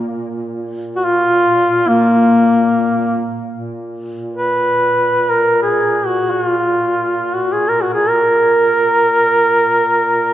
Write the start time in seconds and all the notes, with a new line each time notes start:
Already playing: A#2
0.96 F#4
1.05 F4
1.88 A#3
3.49 A#2
4.33 B4
5.30 A#4
5.62 G#4
6.07 F#4
6.31 F#4
6.43 F4
7.34 F#4
7.52 G#4
7.68 A#4
7.81 F#4
7.94 G#4
8.08 A#4